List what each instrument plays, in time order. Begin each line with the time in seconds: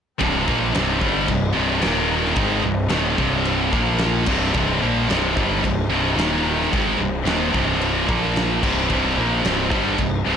0.19 picked electric bass C1, distorted electric guitar C2 G2 C3, string section G3 C4 D#4 C5 D#5, kick, crash
0.46 picked electric bass A#1, distorted electric guitar A#2 F3 A#3, kick
0.72 picked electric bass C1, distorted electric guitar C2 G2 C3, snare, crash
0.99 picked electric bass G1, distorted electric guitar G2 D3 G3, kick
1.26 picked electric bass C1, distorted electric guitar C2 G2, kick, crash
1.53 distorted electric guitar C2 G2 C3
1.57 picked electric bass C1
1.80 distorted electric guitar D#2 A#2 D#3, string section D#3 A#4 A#5, snare, crash
1.84 picked electric bass D#1, string section A#3
2.25 snare
2.34 picked electric bass G#1, distorted electric guitar G#2 D#3 G#3, string section G3 C4 C5 D#5, kick, crash
2.62 picked electric bass C1, distorted electric guitar C2 G2
2.89 picked electric bass D#1, distorted electric guitar D#2 A#2 D#3, snare, crash
3.17 picked electric bass C1, distorted electric guitar C2 G2 C3, kick
3.45 crash
3.71 picked electric bass A#1, distorted electric guitar A#2 F3 A#3, string section F3 A#3 F4 A#4 A#5, kick
3.98 snare, crash
4.26 picked electric bass C1, distorted electric guitar C2 G2 C3, string section G3 C4 D#4 C5 D#5, kick, crash
4.42 snare
4.54 picked electric bass C1, distorted electric guitar C2 G2 C3, kick, crash
4.80 picked electric bass A#1, distorted electric guitar A#2 F3 A#3
5.09 picked electric bass C1, distorted electric guitar C2 G2 C3, snare, crash
5.35 picked electric bass G1, distorted electric guitar G2 D3 G3, kick
5.63 picked electric bass C1, distorted electric guitar C2 G2, kick, crash
5.90 picked electric bass C1, distorted electric guitar C2 G2 C3
6.16 picked electric bass D#1, distorted electric guitar D#2 A#2 D#3, string section D#3 A#3 A#4 A#5, snare, crash
6.61 snare
6.72 picked electric bass G#1, distorted electric guitar G#2 D#3 G#3, string section G3 C4 C5 D#5, kick, crash
6.98 picked electric bass C1, distorted electric guitar C2 G2
7.25 picked electric bass D#1, distorted electric guitar D#2 A#2 D#3, snare, crash
7.52 picked electric bass C1, distorted electric guitar C2 G2 C3, kick
7.81 crash
8.06 picked electric bass A#1, distorted electric guitar A#2 F3 A#3, string section F3 A#3 F4 A#4 A#5, kick
8.36 snare, crash
8.61 picked electric bass C1, distorted electric guitar C2 G2 C3, string section G3 C4 D#4 C5 D#5, kick, crash
8.78 snare
8.88 picked electric bass C1, distorted electric guitar C2 G2 C3, kick, crash
9.16 picked electric bass A#1, distorted electric guitar A#2 F3 A#3
9.43 picked electric bass C1, distorted electric guitar C2 G2 C3, snare, crash
9.70 picked electric bass G1, distorted electric guitar G2 D3 G3, kick
9.97 picked electric bass C1, distorted electric guitar C2 G2, kick, crash
10.25 picked electric bass C1, distorted electric guitar C2 G2 C3